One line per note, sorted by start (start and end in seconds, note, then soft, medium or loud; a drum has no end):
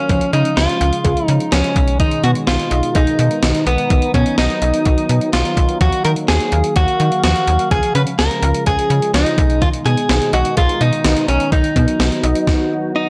0.00 0.33 C#4 medium
0.00 1.72 F5 medium
0.09 0.20 C#2 loud
0.09 1.74 C#3 medium
0.09 1.74 F3 medium
0.09 0.22 F3 medium
0.09 3.86 G#3 medium
0.09 kick loud
0.09 closed hi-hat medium
0.21 closed hi-hat medium
0.33 0.44 C#3 loud
0.33 0.46 C#4 medium
0.33 0.55 D#4 medium
0.33 closed hi-hat medium
0.45 closed hi-hat medium
0.57 0.67 C#2 medium
0.57 1.26 F4 medium
0.57 snare loud
0.57 closed hi-hat medium
0.69 closed hi-hat soft
0.81 0.91 C#2 loud
0.81 0.94 F5 medium
0.81 closed hi-hat medium
0.93 closed hi-hat medium
1.04 1.15 C#2 medium
1.04 1.17 G#4 medium
1.04 kick medium
1.04 closed hi-hat medium
1.17 closed hi-hat soft
1.26 1.39 C#3 loud
1.26 1.55 D#4 medium
1.26 closed hi-hat medium
1.40 closed hi-hat soft
1.52 1.63 C#2 medium
1.52 1.65 F3 medium
1.52 2.00 C#4 medium
1.52 snare loud
1.52 closed hi-hat medium
1.64 closed hi-hat soft
1.76 2.07 B1 loud
1.76 3.88 B2 medium
1.76 3.88 D#3 medium
1.76 3.88 D#4 medium
1.76 kick medium
1.76 closed hi-hat medium
1.88 closed hi-hat soft
2.00 2.13 D#3 medium
2.00 2.22 D#4 medium
2.00 kick loud
2.00 closed hi-hat medium
2.11 closed hi-hat medium
2.24 2.34 B2 loud
2.24 2.37 B3 medium
2.24 2.30 F#4 medium
2.24 closed hi-hat medium
2.35 closed hi-hat soft
2.47 2.58 B1 loud
2.47 2.97 F4 medium
2.47 snare loud
2.47 closed hi-hat medium
2.60 closed hi-hat soft
2.71 2.82 B1 loud
2.71 2.84 D#5 medium
2.71 closed hi-hat medium
2.83 closed hi-hat medium
2.95 3.06 B1 loud
2.95 3.67 D#4 medium
2.95 3.08 G#4 medium
2.95 kick medium
2.95 closed hi-hat medium
3.07 closed hi-hat soft
3.19 3.29 B2 loud
3.19 closed hi-hat medium
3.31 closed hi-hat soft
3.43 3.53 B1 loud
3.43 3.56 D#3 medium
3.43 snare loud
3.43 closed hi-hat medium
3.55 closed hi-hat medium
3.67 3.77 B1 medium
3.67 4.11 B3 medium
3.67 closed hi-hat medium
3.78 closed hi-hat soft
3.90 4.01 B1 loud
3.90 4.03 D#3 medium
3.90 7.68 D#3 medium
3.90 7.68 F#3 medium
3.90 5.79 B3 medium
3.90 5.79 D#4 medium
3.90 kick loud
3.90 closed hi-hat medium
4.02 closed hi-hat medium
4.14 4.25 B2 loud
4.14 4.27 B3 medium
4.14 4.36 C#4 medium
4.14 kick medium
4.14 closed hi-hat medium
4.26 closed hi-hat medium
4.38 4.48 B1 loud
4.38 5.29 D#4 medium
4.38 snare loud
4.38 closed hi-hat medium
4.50 closed hi-hat soft
4.62 4.72 B1 medium
4.62 4.75 D#5 medium
4.62 closed hi-hat medium
4.74 closed hi-hat medium
4.85 4.96 B1 medium
4.85 4.99 F#4 medium
4.85 kick medium
4.85 closed hi-hat medium
4.98 closed hi-hat soft
5.09 5.20 B2 medium
5.09 closed hi-hat medium
5.21 closed hi-hat soft
5.33 5.44 B1 loud
5.33 5.46 D#3 medium
5.33 5.78 F4 medium
5.33 snare loud
5.33 closed hi-hat medium
5.45 closed hi-hat soft
5.57 5.67 B1 loud
5.57 kick loud
5.57 closed hi-hat medium
5.69 closed hi-hat soft
5.81 5.91 D#2 loud
5.81 5.94 F3 medium
5.81 7.69 A#3 medium
5.81 6.03 F#4 medium
5.81 9.35 F5 medium
5.81 kick loud
5.81 closed hi-hat medium
5.93 closed hi-hat medium
6.05 6.15 D#3 loud
6.05 6.18 D#4 medium
6.05 6.11 A#4 medium
6.05 closed hi-hat medium
6.16 closed hi-hat medium
6.28 6.39 D#2 loud
6.28 6.76 G#4 medium
6.28 snare loud
6.28 closed hi-hat medium
6.40 closed hi-hat soft
6.52 6.63 D#2 loud
6.52 6.65 F5 medium
6.52 closed hi-hat medium
6.64 closed hi-hat medium
6.76 6.87 D#2 loud
6.76 6.89 F#4 medium
6.76 7.23 F#4 loud
6.76 kick medium
6.76 closed hi-hat medium
6.88 closed hi-hat soft
7.00 7.10 D#3 medium
7.00 closed hi-hat medium
7.12 closed hi-hat soft
7.24 7.34 D#2 loud
7.24 7.37 F3 medium
7.24 7.68 F#4 medium
7.24 snare loud
7.24 closed hi-hat medium
7.36 closed hi-hat soft
7.47 7.58 D#2 loud
7.47 closed hi-hat medium
7.59 closed hi-hat soft
7.71 7.82 C#2 loud
7.71 9.36 C#3 medium
7.71 7.84 F3 medium
7.71 9.36 F3 medium
7.71 11.48 G#3 medium
7.71 7.93 G#4 loud
7.71 kick loud
7.71 closed hi-hat medium
7.83 closed hi-hat medium
7.95 8.05 C#3 loud
7.95 8.08 C#4 medium
7.95 8.02 B4 loud
7.95 closed hi-hat medium
8.07 closed hi-hat medium
8.19 8.29 C#2 medium
8.19 8.63 A#4 loud
8.19 snare loud
8.19 closed hi-hat medium
8.31 closed hi-hat soft
8.42 8.53 C#2 loud
8.42 8.56 F5 medium
8.42 closed hi-hat medium
8.54 closed hi-hat medium
8.66 8.77 C#2 medium
8.66 8.79 G#4 medium
8.66 9.11 G#4 loud
8.66 kick medium
8.66 closed hi-hat medium
8.79 closed hi-hat soft
8.90 9.01 C#3 medium
8.90 closed hi-hat medium
9.02 closed hi-hat soft
9.14 9.24 C#2 medium
9.14 9.27 F3 medium
9.14 9.63 D#4 medium
9.14 snare loud
9.14 closed hi-hat medium
9.26 closed hi-hat soft
9.38 9.69 B1 loud
9.38 11.50 B2 medium
9.38 13.09 D#3 medium
9.38 11.50 D#4 medium
9.38 kick loud
9.38 closed hi-hat medium
9.50 closed hi-hat soft
9.62 9.75 D#3 medium
9.62 9.68 F4 loud
9.62 kick loud
9.62 closed hi-hat medium
9.74 closed hi-hat medium
9.86 9.96 B2 loud
9.86 9.99 B3 medium
9.86 10.33 G#4 medium
9.86 closed hi-hat medium
9.97 closed hi-hat soft
10.09 10.20 B1 loud
10.09 snare loud
10.09 closed hi-hat medium
10.22 closed hi-hat soft
10.33 10.44 B1 loud
10.33 10.56 F#4 medium
10.33 10.46 D#5 medium
10.33 closed hi-hat medium
10.45 closed hi-hat medium
10.57 10.68 B1 loud
10.57 10.82 F4 loud
10.57 10.70 G#4 medium
10.57 kick medium
10.57 closed hi-hat medium
10.69 closed hi-hat soft
10.81 10.91 B2 medium
10.81 11.28 D#4 medium
10.81 closed hi-hat medium
10.93 closed hi-hat soft
11.05 11.15 B1 medium
11.05 11.18 D#3 medium
11.05 snare loud
11.05 closed hi-hat medium
11.17 closed hi-hat medium
11.28 11.39 B1 medium
11.28 11.52 C#4 medium
11.28 closed hi-hat medium
11.40 closed hi-hat soft
11.52 11.63 B1 loud
11.52 11.65 D#3 medium
11.52 13.09 F#3 medium
11.52 13.09 B3 medium
11.52 12.91 D#4 medium
11.52 13.09 F#4 medium
11.52 kick loud
11.52 closed hi-hat medium
11.64 closed hi-hat medium
11.76 11.86 B2 loud
11.76 11.89 B3 medium
11.76 kick medium
11.76 closed hi-hat medium
11.88 closed hi-hat medium
12.00 12.10 B1 loud
12.00 snare loud
12.00 closed hi-hat medium
12.12 closed hi-hat soft
12.23 12.34 B1 loud
12.23 12.37 D#5 loud
12.23 closed hi-hat medium
12.35 closed hi-hat medium
12.47 kick loud
12.47 snare medium
12.96 13.09 D#4 medium